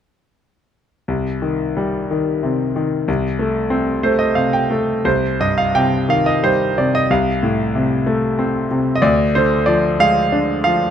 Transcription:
1.08 3.04 C2 soft
1.42 2.09 D#3 soft
1.77 3.04 G3 soft
2.11 2.74 D#3 soft
2.43 3.06 C3 soft
2.76 3.07 D#3 soft
3.08 5.02 C2 medium
3.39 4.02 A3 soft
3.70 5.02 C4 soft
4.03 4.69 A3 soft
4.03 4.18 C5 medium
4.19 4.35 D#5 medium
4.35 5.03 C3 soft
4.35 4.52 F5 medium
4.53 5.02 G5 medium
4.71 5.05 A3 soft
5.05 7.05 C2 soft
5.05 5.42 C5 medium
5.40 6.73 G2 soft
5.40 5.58 D#5 medium
5.58 5.75 F5 medium
5.75 6.77 C3 soft
5.75 6.10 G5 medium
6.09 7.07 D#3 soft
6.09 6.27 F5 medium
6.26 6.44 D#5 medium
6.43 7.08 G3 soft
6.43 6.79 C5 medium
6.78 7.09 C3 soft
6.78 6.93 D5 medium
6.95 7.09 D#5 medium
7.10 8.99 C2 medium
7.10 8.67 F5 medium
7.43 8.67 A2 soft
7.75 8.69 C3 soft
8.07 9.00 A3 soft
8.39 9.01 C4 soft
8.71 9.02 C3 soft
8.96 9.02 D#5 medium
9.02 10.90 D2 medium
9.02 9.35 D5 medium
9.35 10.62 D3 soft
9.35 9.69 C5 medium
9.66 10.64 F3 soft
9.66 10.00 D5 medium
10.00 10.90 G#3 soft
10.00 10.62 F5 medium
10.32 10.90 D4 soft
10.64 10.90 F3 soft
10.64 10.90 F5 medium

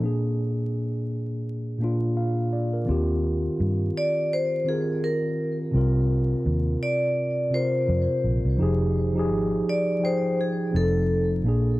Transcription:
0.00 1.26 A#2 medium
0.00 1.27 A#3 medium
0.00 1.28 D4 medium
0.05 1.29 G#4 medium
1.78 2.74 A#2 medium
1.78 2.75 A#3 medium
1.82 2.76 D4 medium
1.82 2.77 F4 medium
2.17 2.51 F5 medium
2.53 2.72 D5 medium
2.73 3.07 A#4 medium
2.85 3.48 D#2 loud
2.85 4.12 D#3 medium
2.85 4.13 C4 medium
2.85 4.14 F4 medium
2.91 4.15 G4 medium
3.60 3.90 G2 medium
3.97 4.33 D5 loud
4.33 4.65 C5 medium
4.64 5.60 D#3 medium
4.64 5.61 C4 medium
4.64 5.62 F4 medium
4.69 5.04 G#4 medium
4.69 5.63 A#4 medium
5.04 5.56 A#4 medium
5.71 6.34 C2 medium
5.71 6.98 C3 medium
5.71 6.99 C4 medium
5.71 7.00 F4 medium
5.77 7.01 A#4 medium
6.46 6.75 D#2 medium
6.83 7.55 D5 loud
7.50 8.46 C3 medium
7.50 8.47 C4 medium
7.50 8.48 F4 medium
7.54 8.49 A#4 medium
7.54 8.21 C5 medium
7.88 8.06 F2 loud
8.24 8.41 A#1 medium
8.45 8.57 C2 medium
8.57 9.31 F1 medium
8.57 9.06 F3 medium
8.57 9.07 D#4 medium
8.57 9.08 G4 medium
8.63 9.09 G#4 loud
9.13 9.91 F3 medium
9.13 9.92 D#4 medium
9.13 9.93 G4 medium
9.19 9.94 G#4 loud
9.31 9.61 G#1 medium
9.69 10.05 D5 medium
10.00 10.70 F3 medium
10.00 10.73 D#4 medium
10.00 10.74 G5 medium
10.05 10.75 G#4 medium
10.05 10.40 C5 medium
10.41 10.76 G#4 medium
10.71 11.46 F1 loud
10.71 11.35 F3 medium
10.71 11.36 C4 medium
10.71 11.37 D#4 medium
10.76 10.83 G#4 medium
10.76 11.28 A4 medium
10.83 11.42 A4 medium
11.42 11.80 A#1 medium
11.42 11.80 A#2 medium
11.42 11.80 A#3 medium
11.42 11.80 D4 medium
11.48 11.80 G#4 medium

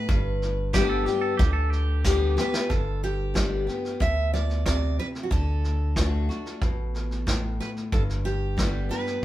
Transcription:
0.00 2.00 B4 medium
0.09 1.08 G1 medium
0.09 1.33 G2 loud
0.09 kick medium
0.09 snare soft
0.42 snare soft
0.73 1.05 D3 medium
0.73 1.05 G3 medium
0.73 1.06 B3 medium
0.73 0.89 G4 loud
0.73 1.05 G4 medium
0.73 kick medium
0.73 snare loud
0.73 hi-hat pedal medium
0.89 1.05 A4 medium
1.05 1.39 B3 soft
1.05 1.21 G4 medium
1.05 1.38 G4 medium
1.05 snare soft
1.21 1.37 A4 medium
1.37 2.38 D2 medium
1.37 2.03 D3 medium
1.37 1.53 G4 medium
1.37 kick loud
1.37 snare soft
1.53 1.70 A4 medium
1.70 2.50 G4 medium
1.70 snare soft
2.04 2.36 D3 medium
2.04 2.36 G3 medium
2.04 2.37 B3 medium
2.04 2.36 G4 medium
2.04 kick medium
2.04 snare medium
2.04 hi-hat pedal medium
2.37 2.70 B3 soft
2.37 2.68 G4 medium
2.37 2.73 B4 medium
2.37 snare medium
2.54 snare medium
2.70 3.69 G1 medium
2.70 3.94 G2 medium
2.70 3.01 A4 medium
2.70 kick medium
2.70 snare soft
3.03 3.97 G4 medium
3.03 snare soft
3.34 3.66 D3 medium
3.34 3.66 G3 medium
3.34 3.67 B3 medium
3.34 3.66 G4 medium
3.34 kick medium
3.34 snare medium
3.34 hi-hat pedal medium
3.67 4.00 B3 soft
3.67 3.99 G4 soft
3.67 snare soft
3.85 snare soft
4.00 4.99 D2 medium
4.00 4.62 B2 medium
4.00 4.33 E5 medium
4.00 kick medium
4.00 snare soft
4.33 4.65 D5 medium
4.33 snare soft
4.50 snare soft
4.66 5.28 C3 medium
4.66 4.99 D5 medium
4.66 kick medium
4.66 snare medium
4.66 hi-hat pedal medium
4.99 5.06 B4 medium
4.99 snare soft
5.15 snare soft
5.23 5.31 F#4 medium
5.31 6.30 D2 medium
5.31 5.95 D3 medium
5.31 7.67 A4 medium
5.31 kick medium
5.31 snare soft
5.64 snare soft
5.96 6.28 D3 medium
5.96 6.28 A3 medium
5.96 6.29 D4 medium
5.96 6.28 F#4 medium
5.96 kick medium
5.96 snare medium
5.96 hi-hat pedal medium
6.29 6.62 D4 soft
6.29 6.60 F#4 soft
6.29 snare soft
6.46 snare soft
6.62 7.61 A1 medium
6.62 7.24 B2 medium
6.62 kick medium
6.62 snare soft
6.94 snare soft
7.11 snare soft
7.27 7.89 A2 medium
7.27 kick medium
7.27 snare loud
7.27 hi-hat pedal medium
7.60 7.69 B4 medium
7.60 snare soft
7.76 snare soft
7.92 8.91 G1 medium
7.92 9.16 G2 medium
7.92 8.01 A4 medium
7.92 kick loud
7.92 snare soft
8.09 snare soft
8.25 8.90 G4 medium
8.25 snare soft
8.57 8.89 D3 soft
8.57 8.89 G3 medium
8.57 8.90 B3 medium
8.57 8.88 G4 medium
8.57 kick medium
8.57 snare medium
8.57 hi-hat pedal medium
8.89 9.22 B3 soft
8.89 9.21 G4 soft
8.89 9.25 B4 medium
8.89 snare soft
9.06 snare soft

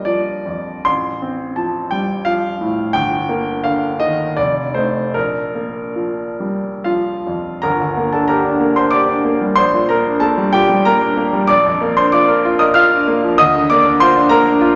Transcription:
0.00 0.81 A#1 soft
0.00 0.06 F3 soft
0.00 0.87 G3 soft
0.00 0.88 A#3 soft
0.00 0.87 D#5 medium
0.00 0.87 F5 soft
0.00 0.87 G5 medium
0.05 0.69 F3 soft
0.05 0.84 D5 medium
0.46 0.85 F2 soft
0.85 2.91 A1 soft
0.85 1.56 C6 medium
1.22 1.77 C4 soft
1.56 2.12 F3 soft
1.56 1.91 A5 medium
1.91 2.26 G3 soft
1.91 2.25 G5 medium
2.25 2.81 F3 soft
2.25 2.94 F5 medium
2.61 2.95 A2 soft
2.93 4.33 G1 medium
2.93 3.64 G5 medium
3.29 3.86 A#3 soft
3.64 4.22 D3 soft
3.64 4.00 F5 medium
4.00 4.37 D#3 soft
4.00 4.37 D#5 medium
4.37 5.12 F1 medium
4.37 4.75 D5 medium
4.74 5.11 A3 soft
4.74 5.11 D#4 soft
4.74 5.14 C5 medium
5.14 7.60 A#1 medium
5.14 7.27 A#4 medium
5.55 6.22 A#3 soft
5.96 6.68 F3 soft
6.40 6.85 G3 soft
6.84 7.50 F3 soft
6.84 7.60 F4 soft
6.84 7.63 F5 medium
7.27 7.64 F2 soft
7.62 9.53 G1 medium
7.62 8.10 A#4 medium
7.62 8.12 A#5 medium
7.80 8.07 D2 soft
7.97 8.23 A#3 soft
8.13 8.39 D4 soft
8.13 8.28 A4 soft
8.13 8.29 A5 medium
8.28 8.55 G4 soft
8.28 8.73 A#4 medium
8.28 8.76 A#5 medium
8.45 8.70 D4 soft
8.60 8.86 A#3 soft
8.76 9.02 D4 soft
8.76 8.92 C5 soft
8.76 8.92 C6 medium
8.91 9.18 G4 medium
8.91 9.53 D5 medium
8.91 9.56 D6 medium
9.08 9.35 D4 soft
9.25 9.51 A#3 soft
9.41 9.58 G3 soft
9.56 11.45 A#1 medium
9.56 9.87 C5 medium
9.56 9.89 C6 medium
9.74 9.99 A#2 soft
9.89 10.15 A#3 soft
9.89 10.20 A#4 medium
9.89 10.21 A#5 medium
10.06 10.32 D4 soft
10.20 10.47 A#3 soft
10.20 10.52 A4 medium
10.20 10.53 A5 medium
10.38 10.63 G3 medium
10.53 10.79 A#2 medium
10.53 10.84 G4 medium
10.53 10.85 G5 medium
10.69 10.95 G3 soft
10.85 11.11 A#3 medium
10.85 11.45 A#4 medium
10.85 11.49 A#5 medium
11.02 11.27 D4 soft
11.17 11.43 A#3 medium
11.33 11.49 G3 soft
11.47 13.34 A#1 medium
11.47 11.94 D5 medium
11.47 11.97 D6 medium
11.65 11.91 F2 medium
11.81 12.07 A#3 medium
11.97 12.23 D4 medium
11.97 12.13 C5 medium
11.97 12.13 C6 medium
12.12 12.39 F4 medium
12.12 12.57 D5 medium
12.12 12.60 D6 medium
12.28 12.54 A#4 medium
12.45 12.70 F4 medium
12.59 12.85 A#4 medium
12.59 12.75 D#5 medium
12.59 12.75 D#6 medium
12.74 13.01 F4 medium
12.74 13.34 F5 medium
12.74 13.38 F6 loud
12.91 13.16 D4 medium
13.08 13.32 A#3 medium
13.23 13.39 F3 medium
13.38 14.76 D2 medium
13.38 13.68 D#5 medium
13.38 13.69 D#6 loud
13.55 13.79 D3 medium
13.70 13.95 A#3 medium
13.70 13.99 D5 medium
13.70 14.00 D6 loud
13.85 14.09 D4 medium
14.00 14.25 F4 medium
14.00 14.29 C5 medium
14.00 14.31 C6 loud
14.16 14.40 D4 medium
14.29 14.55 A#3 medium
14.29 14.59 A#4 medium
14.29 14.61 A#5 loud
14.45 14.70 D4 medium
14.61 14.76 F4 medium

